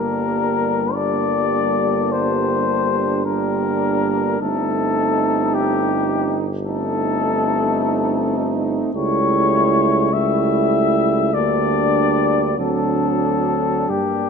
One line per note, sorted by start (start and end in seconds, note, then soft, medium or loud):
0.00 4.36 G1 soft
0.00 0.89 G3 soft
0.00 0.89 A#3 soft
0.00 0.89 D4 soft
0.00 0.95 A#4 medium
0.91 3.22 G3 soft
0.91 3.21 A#3 soft
0.91 3.21 D4 soft
0.91 2.13 D5 medium
2.12 3.25 C5 medium
3.25 4.38 G3 soft
3.25 4.38 A#3 soft
3.25 4.38 D4 soft
3.25 4.38 A#4 medium
4.39 8.77 G1 soft
4.39 6.37 A3 soft
4.39 6.36 C4 soft
4.39 6.48 D#4 soft
4.39 5.56 A4 medium
5.54 6.41 G4 medium
6.65 8.90 A3 medium
6.65 8.90 C4 soft
6.65 8.90 D#4 soft
6.65 8.52 A4 medium
8.94 11.35 C#2 soft
8.94 10.09 G3 soft
8.94 10.09 A3 soft
8.94 10.10 E4 soft
8.94 10.15 C#5 medium
10.12 11.31 G3 soft
10.12 11.36 A3 soft
10.12 11.31 E4 soft
10.12 11.35 E5 medium
11.34 12.59 D2 soft
11.34 12.60 G3 soft
11.34 12.61 A#3 soft
11.34 12.42 D4 soft
11.34 12.59 D5 medium
12.58 13.87 D2 soft
12.58 13.91 F#3 soft
12.58 13.89 C4 soft
12.58 13.87 D4 soft
12.58 13.91 A4 medium
13.89 14.29 G2 soft
13.89 14.29 G3 soft
13.89 14.29 A#3 soft
13.89 14.29 D4 soft
13.89 14.29 G4 medium